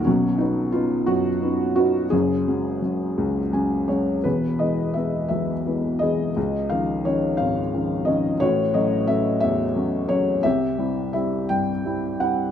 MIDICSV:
0, 0, Header, 1, 2, 480
1, 0, Start_track
1, 0, Tempo, 690449
1, 40, Time_signature, 6, 3, 24, 8
1, 1961, Tempo, 708383
1, 4361, Tempo, 681044
1, 7241, Tempo, 704225
1, 8648, End_track
2, 0, Start_track
2, 0, Title_t, "Felt piano"
2, 0, Program_c, 0, 0
2, 0, Control_c, 0, 64, 127
2, 31, Note_on_c, 0, 61, 91
2, 46, Note_on_c, 0, 47, 79
2, 47, Note_on_c, 0, 35, 67
2, 49, Note_on_c, 0, 54, 66
2, 50, Control_c, 0, 64, 0
2, 174, Control_c, 0, 64, 127
2, 256, Note_off_c, 0, 61, 0
2, 264, Note_on_c, 0, 63, 78
2, 275, Note_off_c, 0, 63, 0
2, 280, Note_on_c, 0, 59, 53
2, 282, Note_on_c, 0, 61, 53
2, 285, Note_on_c, 0, 63, 61
2, 496, Note_off_c, 0, 59, 0
2, 502, Note_off_c, 0, 61, 0
2, 502, Note_on_c, 0, 65, 94
2, 504, Note_off_c, 0, 63, 0
2, 507, Note_on_c, 0, 59, 48
2, 513, Note_on_c, 0, 61, 45
2, 515, Note_on_c, 0, 63, 55
2, 731, Note_off_c, 0, 54, 0
2, 740, Note_on_c, 0, 66, 101
2, 746, Note_on_c, 0, 42, 64
2, 755, Note_off_c, 0, 65, 0
2, 893, Note_off_c, 0, 59, 0
2, 897, Note_off_c, 0, 61, 0
2, 898, Note_off_c, 0, 63, 0
2, 989, Note_on_c, 0, 59, 54
2, 991, Note_on_c, 0, 61, 41
2, 994, Note_on_c, 0, 63, 58
2, 1209, Note_off_c, 0, 66, 0
2, 1217, Note_off_c, 0, 59, 0
2, 1220, Note_on_c, 0, 66, 95
2, 1223, Note_off_c, 0, 61, 0
2, 1226, Note_off_c, 0, 63, 0
2, 1227, Note_on_c, 0, 59, 53
2, 1233, Note_on_c, 0, 61, 49
2, 1236, Note_on_c, 0, 63, 59
2, 1422, Note_off_c, 0, 59, 0
2, 1426, Note_off_c, 0, 61, 0
2, 1428, Note_off_c, 0, 63, 0
2, 1449, Note_off_c, 0, 42, 0
2, 1449, Note_off_c, 0, 47, 0
2, 1450, Note_off_c, 0, 35, 0
2, 1461, Note_on_c, 0, 68, 96
2, 1474, Note_on_c, 0, 30, 63
2, 1474, Note_on_c, 0, 61, 69
2, 1475, Note_off_c, 0, 66, 0
2, 1475, Note_on_c, 0, 42, 74
2, 1485, Control_c, 0, 64, 0
2, 1603, Control_c, 0, 64, 127
2, 1714, Note_off_c, 0, 61, 0
2, 1720, Note_on_c, 0, 54, 51
2, 1722, Note_on_c, 0, 56, 51
2, 1724, Note_on_c, 0, 61, 61
2, 1948, Note_off_c, 0, 54, 0
2, 1953, Note_off_c, 0, 61, 0
2, 1954, Note_off_c, 0, 56, 0
2, 1959, Note_on_c, 0, 54, 41
2, 1964, Note_on_c, 0, 56, 39
2, 1964, Note_on_c, 0, 61, 47
2, 2203, Note_on_c, 0, 37, 67
2, 2348, Note_off_c, 0, 54, 0
2, 2350, Note_off_c, 0, 61, 0
2, 2351, Note_off_c, 0, 56, 0
2, 2412, Note_off_c, 0, 68, 0
2, 2441, Note_on_c, 0, 54, 43
2, 2442, Note_on_c, 0, 80, 58
2, 2444, Note_on_c, 0, 56, 43
2, 2446, Note_on_c, 0, 61, 51
2, 2669, Note_off_c, 0, 80, 0
2, 2670, Note_off_c, 0, 54, 0
2, 2673, Note_off_c, 0, 56, 0
2, 2677, Note_off_c, 0, 61, 0
2, 2677, Note_on_c, 0, 73, 68
2, 2680, Note_on_c, 0, 54, 48
2, 2683, Note_on_c, 0, 56, 45
2, 2688, Note_on_c, 0, 61, 52
2, 2876, Note_off_c, 0, 54, 0
2, 2877, Note_off_c, 0, 56, 0
2, 2880, Note_off_c, 0, 61, 0
2, 2901, Note_off_c, 0, 30, 0
2, 2901, Note_off_c, 0, 42, 0
2, 2906, Note_off_c, 0, 37, 0
2, 2920, Note_on_c, 0, 71, 76
2, 2926, Note_on_c, 0, 28, 63
2, 2926, Note_on_c, 0, 40, 60
2, 2930, Note_off_c, 0, 73, 0
2, 2936, Control_c, 0, 64, 0
2, 2939, Note_on_c, 0, 68, 52
2, 3043, Control_c, 0, 64, 127
2, 3159, Note_on_c, 0, 75, 70
2, 3168, Note_on_c, 0, 52, 46
2, 3169, Note_on_c, 0, 56, 39
2, 3171, Note_off_c, 0, 71, 0
2, 3174, Note_on_c, 0, 59, 50
2, 3387, Note_off_c, 0, 75, 0
2, 3395, Note_on_c, 0, 76, 70
2, 3397, Note_off_c, 0, 52, 0
2, 3402, Note_off_c, 0, 56, 0
2, 3405, Note_off_c, 0, 59, 0
2, 3408, Note_on_c, 0, 52, 39
2, 3412, Note_on_c, 0, 56, 39
2, 3415, Note_on_c, 0, 59, 47
2, 3620, Note_off_c, 0, 76, 0
2, 3627, Note_off_c, 0, 68, 0
2, 3630, Note_on_c, 0, 76, 74
2, 3646, Note_on_c, 0, 35, 53
2, 3792, Note_off_c, 0, 52, 0
2, 3794, Note_off_c, 0, 56, 0
2, 3796, Note_off_c, 0, 59, 0
2, 3888, Note_on_c, 0, 52, 46
2, 3891, Note_on_c, 0, 56, 41
2, 3893, Note_on_c, 0, 59, 49
2, 4108, Note_on_c, 0, 75, 80
2, 4118, Note_off_c, 0, 52, 0
2, 4118, Note_off_c, 0, 56, 0
2, 4121, Note_off_c, 0, 59, 0
2, 4127, Note_on_c, 0, 68, 57
2, 4128, Note_on_c, 0, 52, 52
2, 4128, Note_on_c, 0, 56, 46
2, 4131, Note_on_c, 0, 59, 59
2, 4132, Note_off_c, 0, 76, 0
2, 4316, Note_off_c, 0, 52, 0
2, 4316, Note_off_c, 0, 56, 0
2, 4318, Note_off_c, 0, 59, 0
2, 4334, Note_off_c, 0, 28, 0
2, 4335, Note_off_c, 0, 40, 0
2, 4340, Note_off_c, 0, 35, 0
2, 4363, Note_on_c, 0, 37, 71
2, 4373, Control_c, 0, 64, 0
2, 4482, Control_c, 0, 64, 127
2, 4595, Note_on_c, 0, 77, 82
2, 4607, Note_on_c, 0, 51, 49
2, 4609, Note_on_c, 0, 53, 49
2, 4612, Note_off_c, 0, 75, 0
2, 4612, Note_on_c, 0, 61, 49
2, 4820, Note_off_c, 0, 68, 0
2, 4837, Note_off_c, 0, 51, 0
2, 4842, Note_off_c, 0, 53, 0
2, 4844, Note_off_c, 0, 61, 0
2, 4845, Note_on_c, 0, 73, 84
2, 4848, Note_on_c, 0, 51, 49
2, 4850, Note_off_c, 0, 77, 0
2, 4852, Note_on_c, 0, 53, 42
2, 4855, Note_on_c, 0, 61, 53
2, 5073, Note_on_c, 0, 77, 91
2, 5089, Note_on_c, 0, 32, 62
2, 5093, Note_off_c, 0, 73, 0
2, 5231, Note_off_c, 0, 51, 0
2, 5233, Note_off_c, 0, 53, 0
2, 5235, Note_off_c, 0, 61, 0
2, 5329, Note_on_c, 0, 51, 46
2, 5332, Note_on_c, 0, 53, 45
2, 5334, Note_on_c, 0, 61, 56
2, 5549, Note_on_c, 0, 75, 79
2, 5551, Note_off_c, 0, 51, 0
2, 5553, Note_off_c, 0, 53, 0
2, 5557, Note_off_c, 0, 61, 0
2, 5562, Note_on_c, 0, 51, 52
2, 5563, Note_on_c, 0, 53, 46
2, 5568, Note_on_c, 0, 61, 65
2, 5573, Note_off_c, 0, 77, 0
2, 5755, Note_off_c, 0, 51, 0
2, 5756, Note_off_c, 0, 53, 0
2, 5759, Note_off_c, 0, 61, 0
2, 5778, Note_off_c, 0, 37, 0
2, 5785, Note_off_c, 0, 32, 0
2, 5796, Note_on_c, 0, 73, 97
2, 5805, Note_off_c, 0, 75, 0
2, 5807, Note_on_c, 0, 66, 60
2, 5809, Note_on_c, 0, 45, 82
2, 5811, Note_on_c, 0, 33, 63
2, 5816, Control_c, 0, 64, 0
2, 5942, Control_c, 0, 64, 127
2, 6035, Note_on_c, 0, 75, 83
2, 6040, Note_on_c, 0, 54, 52
2, 6044, Note_on_c, 0, 57, 53
2, 6048, Note_off_c, 0, 73, 0
2, 6048, Note_on_c, 0, 61, 58
2, 6271, Note_off_c, 0, 54, 0
2, 6271, Note_on_c, 0, 76, 90
2, 6274, Note_off_c, 0, 57, 0
2, 6275, Note_off_c, 0, 61, 0
2, 6282, Note_on_c, 0, 54, 50
2, 6285, Note_on_c, 0, 57, 44
2, 6285, Note_on_c, 0, 61, 57
2, 6286, Note_off_c, 0, 75, 0
2, 6492, Note_off_c, 0, 66, 0
2, 6494, Note_off_c, 0, 76, 0
2, 6504, Note_on_c, 0, 76, 101
2, 6524, Note_on_c, 0, 40, 69
2, 6662, Note_off_c, 0, 54, 0
2, 6664, Note_off_c, 0, 57, 0
2, 6664, Note_off_c, 0, 61, 0
2, 6754, Note_on_c, 0, 54, 54
2, 6755, Note_on_c, 0, 57, 47
2, 6760, Note_on_c, 0, 61, 58
2, 6984, Note_off_c, 0, 54, 0
2, 6984, Note_off_c, 0, 57, 0
2, 6984, Note_on_c, 0, 73, 96
2, 6992, Note_off_c, 0, 61, 0
2, 6994, Note_on_c, 0, 57, 51
2, 6995, Note_on_c, 0, 54, 53
2, 7002, Note_on_c, 0, 61, 62
2, 7005, Note_off_c, 0, 76, 0
2, 7191, Note_off_c, 0, 54, 0
2, 7191, Note_off_c, 0, 57, 0
2, 7195, Note_off_c, 0, 61, 0
2, 7215, Note_off_c, 0, 45, 0
2, 7216, Note_off_c, 0, 33, 0
2, 7222, Note_off_c, 0, 40, 0
2, 7227, Note_on_c, 0, 76, 101
2, 7236, Note_on_c, 0, 48, 68
2, 7237, Note_on_c, 0, 36, 74
2, 7242, Note_off_c, 0, 73, 0
2, 7243, Note_on_c, 0, 67, 65
2, 7250, Control_c, 0, 64, 0
2, 7354, Control_c, 0, 64, 127
2, 7468, Note_on_c, 0, 55, 48
2, 7473, Note_on_c, 0, 60, 46
2, 7476, Note_on_c, 0, 64, 56
2, 7696, Note_off_c, 0, 76, 0
2, 7703, Note_off_c, 0, 55, 0
2, 7703, Note_off_c, 0, 60, 0
2, 7705, Note_off_c, 0, 64, 0
2, 7706, Note_on_c, 0, 76, 81
2, 7713, Note_on_c, 0, 55, 48
2, 7713, Note_on_c, 0, 60, 45
2, 7716, Note_on_c, 0, 64, 53
2, 7931, Note_off_c, 0, 67, 0
2, 7950, Note_on_c, 0, 79, 89
2, 7959, Note_off_c, 0, 76, 0
2, 7960, Note_on_c, 0, 43, 60
2, 8099, Note_off_c, 0, 55, 0
2, 8099, Note_off_c, 0, 60, 0
2, 8101, Note_off_c, 0, 64, 0
2, 8197, Note_on_c, 0, 55, 43
2, 8202, Note_on_c, 0, 60, 41
2, 8204, Note_on_c, 0, 64, 51
2, 8428, Note_off_c, 0, 55, 0
2, 8429, Note_off_c, 0, 60, 0
2, 8434, Note_off_c, 0, 64, 0
2, 8435, Note_on_c, 0, 78, 90
2, 8438, Note_on_c, 0, 55, 47
2, 8439, Note_on_c, 0, 60, 42
2, 8444, Note_on_c, 0, 64, 53
2, 8451, Note_off_c, 0, 79, 0
2, 8633, Note_off_c, 0, 55, 0
2, 8634, Note_off_c, 0, 60, 0
2, 8637, Note_off_c, 0, 64, 0
2, 8648, Note_off_c, 0, 36, 0
2, 8648, Note_off_c, 0, 43, 0
2, 8648, Note_off_c, 0, 48, 0
2, 8648, Note_off_c, 0, 78, 0
2, 8648, End_track
0, 0, End_of_file